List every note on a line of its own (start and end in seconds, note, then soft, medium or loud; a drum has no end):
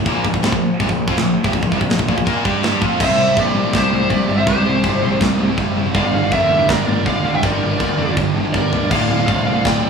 0.06 0.23 A#1 loud
0.06 0.24 A#2 loud
0.06 0.24 F3 loud
0.06 0.25 A#3 loud
0.06 kick loud
0.06 china medium
0.25 0.33 A#1 loud
0.25 0.33 A#2 medium
0.25 0.32 F3 medium
0.25 kick loud
0.34 0.43 A#1 medium
0.34 0.42 A#2 medium
0.34 0.43 F3 medium
0.34 kick medium
0.42 0.52 C2 medium
0.42 0.51 C3 medium
0.42 0.52 G3 loud
0.42 snare loud
0.42 china medium
0.51 0.69 A#1 medium
0.51 0.67 A#2 medium
0.51 0.67 F3 medium
0.51 kick loud
0.80 0.89 C2 medium
0.80 0.88 C3 medium
0.80 0.89 G3 medium
0.80 kick loud
0.80 china medium
0.89 1.06 A#1 medium
0.89 1.04 A#2 medium
0.89 1.04 F3 medium
0.89 kick loud
1.08 1.15 F2 loud
1.08 1.16 F3 medium
1.08 1.17 C4 medium
1.08 kick loud
1.16 1.33 A#1 medium
1.16 1.32 A#2 medium
1.16 1.32 F3 medium
1.16 snare loud
1.16 china soft
1.44 1.53 C2 loud
1.44 1.53 C3 medium
1.44 1.54 G3 medium
1.44 kick loud
1.53 1.62 A#1 medium
1.53 1.62 A#2 medium
1.53 1.63 F3 medium
1.53 kick loud
1.53 china medium
1.63 1.71 A#1 medium
1.63 1.72 A#2 medium
1.63 1.72 F3 medium
1.63 kick medium
1.72 1.80 C2 loud
1.72 1.81 C3 loud
1.72 1.81 G3 loud
1.72 kick medium
1.81 1.88 A#1 medium
1.81 1.89 A#2 medium
1.81 1.90 F3 medium
1.81 kick medium
1.89 1.98 A#1 medium
1.89 1.98 A#2 medium
1.89 1.99 F3 medium
1.89 snare loud
1.89 china medium
1.99 2.08 A#1 medium
1.99 2.07 A#2 medium
1.99 2.07 F3 medium
1.99 kick loud
2.08 2.17 A#1 loud
2.08 2.17 A#2 medium
2.08 2.17 F3 loud
2.08 kick medium
2.18 2.26 A#1 medium
2.18 2.27 A#2 medium
2.18 2.27 F3 medium
2.18 kick medium
2.26 2.44 A#2 medium
2.26 2.44 A#3 medium
2.26 2.44 F4 medium
2.26 2.44 A#4 loud
2.26 kick loud
2.26 china medium
2.44 2.79 G2 medium
2.44 2.81 G3 loud
2.44 2.81 D4 loud
2.44 2.81 G4 loud
2.44 kick loud
2.63 snare loud
2.63 china medium
2.81 2.99 F2 medium
2.81 2.99 F3 loud
2.81 2.99 C4 loud
2.81 3.00 F4 loud
2.81 kick loud
2.99 3.17 C2 loud
2.99 3.08 C3 medium
2.99 3.08 G3 loud
2.99 3.08 C4 loud
2.99 3.35 C5 medium
2.99 3.38 E5 loud
2.99 kick loud
2.99 crash loud
2.99 china medium
3.09 3.17 C3 medium
3.09 3.17 G3 medium
3.17 3.35 C2 medium
3.17 3.26 C3 medium
3.17 3.26 G3 loud
3.17 3.38 C4 loud
3.27 3.36 C3 medium
3.27 3.36 G3 medium
3.37 3.54 A#1 medium
3.37 3.54 C3 medium
3.37 3.53 G3 medium
3.37 3.56 C4 medium
3.37 3.71 G4 medium
3.37 3.77 D5 loud
3.37 kick medium
3.37 china medium
3.55 3.72 A#1 medium
3.55 3.65 C3 medium
3.55 3.64 G3 medium
3.55 3.74 C4 medium
3.65 3.73 C3 medium
3.65 3.73 G3 medium
3.73 3.91 C2 loud
3.73 3.90 C3 medium
3.73 3.90 G3 medium
3.73 3.92 C4 loud
3.73 4.08 G4 medium
3.73 4.12 C5 medium
3.73 kick loud
3.73 snare loud
3.73 china medium
3.92 4.09 C2 loud
3.92 4.01 C3 medium
3.92 4.01 G3 medium
3.92 4.10 C4 loud
4.02 4.10 C3 medium
4.02 4.11 G3 medium
4.10 4.28 A#1 medium
4.10 4.28 C3 medium
4.10 4.27 G3 medium
4.10 4.28 C4 loud
4.10 4.37 G4 medium
4.10 4.37 D5 loud
4.10 kick medium
4.10 china medium
4.29 4.46 G1 medium
4.29 4.38 C3 medium
4.29 4.38 G3 medium
4.29 4.47 C4 loud
4.38 4.47 C3 medium
4.38 4.48 G3 medium
4.38 4.43 C5 medium
4.38 4.42 E5 loud
4.47 4.65 C2 loud
4.47 4.56 C3 medium
4.47 4.56 G3 medium
4.47 4.66 C4 loud
4.47 5.17 G4 medium
4.47 5.17 C5 medium
4.47 kick loud
4.47 china medium
4.57 4.65 C3 medium
4.57 4.65 G3 medium
4.66 4.83 C2 loud
4.66 4.74 C3 medium
4.66 4.74 G3 medium
4.66 4.84 C4 medium
4.75 4.83 C3 medium
4.75 4.84 G3 medium
4.84 5.02 G1 loud
4.84 5.01 C3 medium
4.84 5.01 G3 loud
4.84 5.02 C4 loud
4.84 kick medium
4.84 china medium
5.03 5.20 A#1 medium
5.03 5.11 C3 medium
5.03 5.10 G3 medium
5.03 5.21 C4 medium
5.12 5.20 C3 medium
5.12 5.21 G3 medium
5.21 5.39 C2 loud
5.21 5.38 C3 medium
5.21 5.38 G3 medium
5.21 5.40 C4 loud
5.21 kick loud
5.21 snare loud
5.21 china medium
5.39 5.57 C2 medium
5.39 5.47 C3 medium
5.39 5.47 G3 medium
5.39 5.59 C4 loud
5.48 5.56 C3 medium
5.48 5.57 G3 medium
5.57 5.93 F#1 medium
5.57 5.74 C3 medium
5.57 5.75 G3 medium
5.57 5.77 C4 loud
5.57 kick medium
5.57 china medium
5.77 5.85 C3 medium
5.77 5.85 G3 medium
5.77 5.95 C4 loud
5.86 5.95 C3 medium
5.86 5.95 G3 medium
5.94 6.12 G1 loud
5.94 6.03 G2 medium
5.94 6.03 D3 loud
5.94 6.04 G3 loud
5.94 6.30 D5 medium
5.94 6.30 F5 medium
5.94 kick loud
5.94 china medium
6.04 6.12 G2 medium
6.04 6.12 D3 medium
6.13 6.31 G1 loud
6.13 6.22 G2 medium
6.13 6.22 D3 medium
6.13 6.33 G3 medium
6.23 6.31 G2 medium
6.23 6.32 D3 medium
6.32 6.49 F2 loud
6.32 6.49 G2 medium
6.32 6.49 D3 loud
6.32 6.52 G3 loud
6.32 6.68 A#4 medium
6.32 6.69 E5 loud
6.32 kick medium
6.32 china medium
6.50 6.67 F1 loud
6.50 6.58 G2 medium
6.50 6.58 D3 medium
6.50 6.70 G3 medium
6.59 6.67 G2 medium
6.59 6.68 D3 medium
6.69 6.86 G1 medium
6.69 6.85 G2 medium
6.69 6.85 D3 medium
6.69 6.88 G3 loud
6.69 7.04 A#4 medium
6.69 7.03 D5 loud
6.69 kick loud
6.69 snare loud
6.69 china medium
6.86 7.04 G1 medium
6.86 6.96 G2 medium
6.86 6.95 D3 medium
6.86 7.06 G3 loud
6.96 7.05 G2 medium
6.96 7.05 D3 medium
7.06 7.23 F1 medium
7.06 7.23 G2 medium
7.06 7.23 D3 medium
7.06 7.24 G3 loud
7.06 7.33 D5 medium
7.06 7.35 F5 loud
7.06 kick medium
7.06 china medium
7.24 7.41 D2 medium
7.24 7.34 G2 medium
7.24 7.33 D3 medium
7.24 7.43 G3 loud
7.34 7.43 G2 medium
7.34 7.43 D3 medium
7.34 7.43 E5 loud
7.34 7.43 G5 loud
7.43 7.60 G1 loud
7.43 7.52 G2 medium
7.43 7.52 D3 loud
7.43 7.63 G3 loud
7.43 8.14 A#4 medium
7.43 8.13 D5 loud
7.43 kick loud
7.43 china medium
7.53 7.62 G2 medium
7.53 7.61 D3 medium
7.61 7.79 G1 loud
7.61 7.71 G2 medium
7.61 7.71 D3 medium
7.61 7.81 G3 medium
7.72 7.80 G2 medium
7.72 7.80 D3 medium
7.80 7.98 D2 medium
7.80 7.97 G2 medium
7.80 7.97 D3 medium
7.80 7.99 G3 loud
7.80 kick medium
7.80 china medium
7.99 8.16 F1 loud
7.99 8.08 G2 medium
7.99 8.08 D3 medium
7.99 8.18 G3 medium
8.10 8.16 G2 medium
8.10 8.16 D3 medium
8.17 8.35 G1 loud
8.17 8.34 G2 medium
8.17 8.34 D3 medium
8.17 8.35 G3 loud
8.17 kick loud
8.35 8.53 G1 medium
8.35 8.44 G2 medium
8.35 8.44 D3 medium
8.35 8.54 G3 medium
8.45 8.53 G2 medium
8.45 8.53 D3 medium
8.53 8.89 G1 medium
8.53 8.71 G2 medium
8.53 8.71 D3 medium
8.53 8.73 G3 loud
8.53 8.89 A#4 medium
8.53 8.91 D5 medium
8.53 kick medium
8.72 8.82 G2 medium
8.72 8.82 D3 medium
8.72 8.91 G3 loud
8.72 floor tom medium
8.83 8.91 G2 medium
8.83 8.92 D3 medium
8.91 9.08 D1 loud
8.91 8.99 D2 loud
8.91 9.00 A2 loud
8.91 9.00 D3 loud
8.91 9.25 D5 medium
8.91 9.25 F5 medium
8.91 kick loud
8.91 china medium
8.91 crash loud
9.01 9.10 D2 medium
9.01 9.10 A2 medium
9.09 9.27 D1 medium
9.09 9.19 D2 medium
9.09 9.19 A2 medium
9.09 9.27 D3 medium
9.20 9.28 D2 medium
9.20 9.28 A2 medium
9.27 9.45 C2 medium
9.27 9.45 D2 medium
9.27 9.45 A2 loud
9.27 9.44 D3 loud
9.27 9.62 D5 medium
9.27 9.65 F5 loud
9.27 kick medium
9.27 china medium
9.45 9.63 C2 loud
9.45 9.55 D2 medium
9.45 9.54 A2 medium
9.45 9.63 D3 loud
9.56 9.64 D2 medium
9.56 9.64 A2 medium
9.65 9.82 D1 loud
9.65 9.82 D2 medium
9.65 9.82 A2 medium
9.65 9.82 D3 loud
9.65 9.90 D5 loud
9.65 9.90 G5 loud
9.65 kick loud
9.65 snare loud
9.65 china medium
9.83 9.90 D1 loud
9.83 9.90 D2 medium
9.83 9.90 A2 loud
9.83 9.90 D3 loud